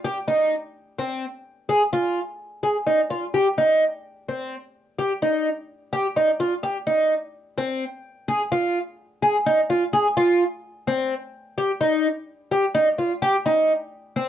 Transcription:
0.05 G4
0.28 D#4
0.99 C4
1.69 G#4
1.93 F4
2.63 G#4
2.87 D#4
3.10 F4
3.34 G4
3.58 D#4
4.29 C4
4.99 G4
5.22 D#4
5.93 G4
6.16 D#4
6.40 F4
6.63 G4
6.87 D#4
7.58 C4
8.28 G#4
8.52 F4
9.22 G#4
9.46 D#4
9.70 F4
9.93 G#4
10.17 F4
10.87 C4
11.58 G4
11.81 D#4
12.52 G4
12.75 D#4
12.98 F4
13.22 G4
13.45 D#4
14.16 C4

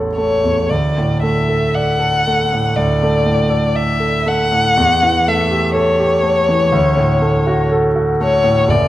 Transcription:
Already playing: A1 E2 A3 A4 C#5
0.17 A3 C#5
0.44 E2
0.70 D2 D5
0.98 A2
1.22 A3 E5
1.49 A4
1.74 D5 F#5
1.99 A4
2.27 A3
2.52 A2
2.76 D2 D5
3.03 A3
3.26 A2
3.50 A4
3.75 D5 E5
4.00 A4
4.26 A3 F#5
4.52 A2
4.77 E2
5.03 E3
5.28 A3 E5
5.51 G4
5.74 A4 C#5
6.00 G4
6.23 A3
6.49 E3
6.72 D2
6.97 A2
7.21 A3
7.47 F#4
7.72 A4
7.96 F#4
8.21 A3 C#5
8.44 A2
8.68 F#1 D5

